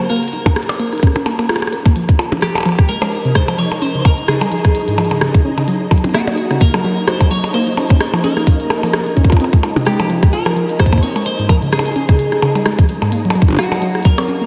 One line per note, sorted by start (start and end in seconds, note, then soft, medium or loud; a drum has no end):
0.10 0.20 A#3 loud
0.10 1.45 A#4 loud
0.10 closed hi-hat soft
0.16 closed hi-hat medium
0.23 closed hi-hat medium
0.28 closed hi-hat medium
0.33 0.40 D#4 medium
0.33 closed hi-hat medium
0.46 0.54 A#3 medium
0.46 kick loud
0.46 closed hi-hat soft
0.46 percussion blips medium
0.56 0.63 A#3 medium
0.56 cross-stick loud
0.63 closed hi-hat loud
0.69 closed hi-hat soft
0.69 percussion blips medium
0.79 0.87 A#3 loud
0.79 closed hi-hat medium
0.93 0.98 D#4 medium
0.93 cross-stick soft
0.93 closed hi-hat soft
0.95 closed hi-hat soft
0.98 cross-stick soft
0.98 closed hi-hat medium
1.03 1.07 C#4 medium
1.03 kick loud
1.03 closed hi-hat soft
1.07 cross-stick soft
1.07 closed hi-hat soft
1.13 cross-stick medium
1.13 closed hi-hat soft
1.16 1.24 C#4 medium
1.16 closed hi-hat soft
1.16 percussion blips medium
1.26 1.30 A#3 loud
1.26 closed hi-hat soft
1.26 percussion blips medium
1.39 1.45 A#3 loud
1.39 closed hi-hat soft
1.39 percussion blips medium
1.49 1.56 F4 loud
1.49 cross-stick loud
1.49 closed hi-hat medium
1.56 cross-stick medium
1.62 cross-stick medium
1.67 cross-stick medium
1.73 1.77 A#4 medium
1.73 closed hi-hat medium
1.86 1.94 A#3 medium
1.86 kick loud
1.86 closed hi-hat soft
1.86 percussion blips medium
1.96 2.07 F3 loud
1.96 14.46 D#4 medium
1.96 14.46 D#5 medium
1.96 closed hi-hat loud
2.09 kick loud
2.19 2.26 F4 loud
2.19 closed hi-hat medium
2.19 percussion blips medium
2.32 2.40 F3 medium
2.32 percussion blips medium
2.42 2.49 F3 medium
2.42 2.86 G4 medium
2.42 cross-stick loud
2.42 closed hi-hat medium
2.55 closed hi-hat soft
2.55 percussion blips medium
2.58 percussion blips medium
2.60 percussion blips medium
2.63 closed hi-hat medium
2.63 percussion blips soft
2.66 2.73 F3 loud
2.66 percussion blips soft
2.69 percussion blips soft
2.72 percussion blips soft
2.75 kick loud
2.75 cross-stick medium
2.75 closed hi-hat soft
2.75 percussion blips soft
2.89 2.93 G#3 medium
2.89 3.35 A#4 loud
2.89 closed hi-hat loud
3.02 3.10 G#3 medium
3.02 cross-stick medium
3.02 closed hi-hat soft
3.02 percussion blips medium
3.12 closed hi-hat soft
3.25 3.31 C3 loud
3.25 closed hi-hat soft
3.35 3.58 C5 loud
3.35 kick loud
3.35 cross-stick loud
3.35 closed hi-hat loud
3.48 3.54 F3 medium
3.48 closed hi-hat soft
3.48 percussion blips medium
3.58 3.69 F3 loud
3.58 3.82 C#5 loud
3.58 closed hi-hat medium
3.72 closed hi-hat soft
3.72 percussion blips medium
3.82 3.89 C#4 loud
3.82 3.99 C5 loud
3.82 closed hi-hat loud
3.95 4.03 C#3 medium
3.95 closed hi-hat soft
4.00 4.05 C5 medium
4.05 4.29 A#4 loud
4.05 kick loud
4.05 closed hi-hat medium
4.05 percussion blips medium
4.18 closed hi-hat soft
4.28 4.36 C#3 loud
4.28 5.18 G#4 medium
4.28 cross-stick loud
4.28 closed hi-hat medium
4.41 4.47 G3 medium
4.41 closed hi-hat soft
4.41 percussion blips medium
4.52 4.56 F3 medium
4.52 closed hi-hat medium
4.65 4.73 F3 medium
4.65 kick loud
4.65 cross-stick medium
4.65 closed hi-hat soft
4.75 closed hi-hat medium
4.88 4.94 G#2 loud
4.88 closed hi-hat soft
4.98 5.09 F3 loud
4.98 closed hi-hat soft
4.98 percussion blips medium
5.05 closed hi-hat soft
5.11 5.17 C#3 medium
5.11 percussion blips medium
5.21 5.32 C#3 loud
5.21 cross-stick loud
5.21 closed hi-hat loud
5.34 kick loud
5.34 closed hi-hat soft
5.45 5.52 C#4 loud
5.58 5.66 C#3 medium
5.58 closed hi-hat soft
5.58 percussion blips medium
5.68 5.75 F#3 medium
5.68 closed hi-hat loud
5.91 5.98 F#3 loud
5.91 kick loud
5.91 percussion blips medium
5.98 closed hi-hat medium
6.04 6.10 C4 medium
6.04 closed hi-hat soft
6.04 percussion blips medium
6.14 6.19 A#3 medium
6.14 6.62 F#4 medium
6.14 cross-stick loud
6.14 closed hi-hat medium
6.27 6.36 A#3 medium
6.27 closed hi-hat soft
6.27 percussion blips medium
6.38 closed hi-hat medium
6.51 6.56 C#3 loud
6.51 cross-stick medium
6.51 closed hi-hat soft
6.61 6.72 A#3 loud
6.61 7.07 A#4 loud
6.61 kick loud
6.61 closed hi-hat medium
6.74 6.80 F#3 medium
6.74 cross-stick medium
6.74 closed hi-hat soft
6.74 percussion blips medium
6.84 6.95 F#3 loud
6.84 closed hi-hat soft
6.97 closed hi-hat soft
7.07 7.15 F#4 loud
7.07 7.29 C5 loud
7.07 cross-stick loud
7.07 closed hi-hat loud
7.20 7.29 F#3 medium
7.20 kick loud
7.20 closed hi-hat soft
7.20 percussion blips medium
7.31 7.38 F#3 medium
7.31 7.54 C#5 loud
7.31 closed hi-hat medium
7.44 closed hi-hat soft
7.44 percussion blips soft
7.54 7.61 A#3 loud
7.54 8.24 C5 loud
7.54 closed hi-hat medium
7.67 7.73 D#4 medium
7.67 closed hi-hat soft
7.77 7.81 C#4 medium
7.77 closed hi-hat medium
7.77 percussion blips medium
7.90 7.99 C#4 medium
7.90 kick loud
7.90 closed hi-hat soft
7.90 percussion blips soft
8.00 cross-stick loud
8.00 closed hi-hat medium
8.14 8.19 F3 loud
8.14 percussion blips medium
8.24 8.34 C#4 loud
8.24 9.13 A#4 medium
8.24 closed hi-hat medium
8.37 8.42 A#3 medium
8.37 cross-stick medium
8.37 closed hi-hat soft
8.39 closed hi-hat soft
8.42 closed hi-hat soft
8.44 8.58 A#3 loud
8.44 closed hi-hat soft
8.47 kick loud
8.47 closed hi-hat medium
8.53 closed hi-hat soft
8.57 closed hi-hat soft
8.60 closed hi-hat soft
8.70 8.81 A#3 medium
8.70 cross-stick medium
8.70 closed hi-hat soft
8.70 percussion blips medium
8.75 closed hi-hat soft
8.78 closed hi-hat soft
8.83 8.89 F3 medium
8.83 closed hi-hat soft
8.83 percussion blips soft
8.86 closed hi-hat soft
8.90 cross-stick loud
8.90 closed hi-hat soft
8.93 8.98 A#4 medium
8.93 closed hi-hat medium
9.06 closed hi-hat soft
9.17 9.24 C#4 loud
9.17 kick medium
9.17 closed hi-hat medium
9.24 kick medium
9.30 9.38 F4 loud
9.30 kick medium
9.30 closed hi-hat soft
9.30 percussion blips soft
9.37 9.47 C4 medium
9.37 closed hi-hat medium
9.37 percussion blips soft
9.44 percussion blips soft
9.53 9.61 G#3 medium
9.53 kick loud
9.53 closed hi-hat soft
9.63 closed hi-hat medium
9.63 percussion blips medium
9.76 9.82 C3 loud
9.76 closed hi-hat soft
9.76 percussion blips medium
9.86 9.97 G#3 loud
9.86 10.30 G4 medium
9.86 cross-stick loud
9.86 closed hi-hat medium
10.00 10.05 F3 medium
10.00 closed hi-hat soft
10.00 percussion blips medium
10.10 10.20 F3 loud
10.10 closed hi-hat medium
10.23 kick loud
10.23 cross-stick medium
10.23 closed hi-hat soft
10.33 10.40 F4 loud
10.33 10.79 A#4 loud
10.33 closed hi-hat medium
10.46 10.54 F3 medium
10.46 cross-stick medium
10.46 closed hi-hat soft
10.46 percussion blips medium
10.56 10.63 F3 medium
10.56 closed hi-hat soft
10.69 closed hi-hat soft
10.79 10.87 F3 loud
10.79 11.01 C5 loud
10.79 kick loud
10.79 cross-stick loud
10.79 closed hi-hat medium
10.86 kick medium
10.92 10.98 A#3 medium
10.92 kick medium
10.92 closed hi-hat soft
10.92 percussion blips medium
10.98 kick medium
11.03 11.10 C4 medium
11.03 11.26 C#5 loud
11.03 closed hi-hat medium
11.16 11.24 G#3 medium
11.16 closed hi-hat soft
11.16 percussion blips medium
11.18 closed hi-hat soft
11.20 closed hi-hat soft
11.22 closed hi-hat soft
11.24 11.49 C5 loud
11.24 closed hi-hat soft
11.26 closed hi-hat medium
11.39 11.45 G#2 loud
11.39 closed hi-hat soft
11.49 11.60 F3 loud
11.49 11.55 A#4 loud
11.49 kick loud
11.49 closed hi-hat medium
11.49 percussion blips medium
11.62 11.68 C#3 medium
11.62 closed hi-hat soft
11.72 11.83 C#3 loud
11.72 12.62 G#4 medium
11.72 cross-stick loud
11.72 closed hi-hat medium
11.79 percussion blips medium
11.86 closed hi-hat soft
11.96 12.03 C#4 loud
11.96 closed hi-hat medium
12.09 12.17 C#3 medium
12.09 kick loud
12.09 cross-stick medium
12.09 closed hi-hat soft
12.19 12.26 C#3 medium
12.19 closed hi-hat medium
12.32 cross-stick medium
12.32 closed hi-hat soft
12.42 12.49 C#3 loud
12.42 closed hi-hat soft
12.42 percussion blips medium
12.55 12.61 G3 medium
12.55 closed hi-hat soft
12.55 percussion blips medium
12.66 12.73 G#3 medium
12.66 cross-stick loud
12.66 closed hi-hat medium
12.79 12.87 F3 medium
12.79 kick loud
12.79 closed hi-hat soft
12.89 closed hi-hat medium
13.02 13.08 G#2 loud
13.02 closed hi-hat soft
13.02 percussion blips medium
13.12 13.23 A#3 loud
13.12 closed hi-hat medium
13.25 13.31 F#3 medium
13.25 closed hi-hat soft
13.30 percussion blips medium
13.35 13.46 F#3 loud
13.35 closed hi-hat medium
13.42 kick loud
13.48 closed hi-hat soft
13.48 percussion blips soft
13.50 percussion blips soft
13.53 percussion blips medium
13.55 percussion blips medium
13.57 14.07 F#4 medium
13.57 13.66 F#4 loud
13.57 cross-stick loud
13.57 closed hi-hat medium
13.57 percussion blips medium
13.72 13.80 F#3 medium
13.72 closed hi-hat soft
13.72 percussion blips medium
13.82 13.89 F#3 medium
13.82 closed hi-hat medium
13.95 cross-stick medium
13.95 closed hi-hat soft
13.98 closed hi-hat soft
14.00 closed hi-hat soft
14.03 14.12 F#3 loud
14.03 closed hi-hat soft
14.05 14.46 A#4 loud
14.05 kick loud
14.05 closed hi-hat medium
14.18 14.24 C4 medium
14.18 cross-stick medium
14.18 closed hi-hat soft
14.18 percussion blips medium
14.28 14.35 C#4 medium
14.28 closed hi-hat soft
14.41 14.46 A#3 medium
14.41 closed hi-hat soft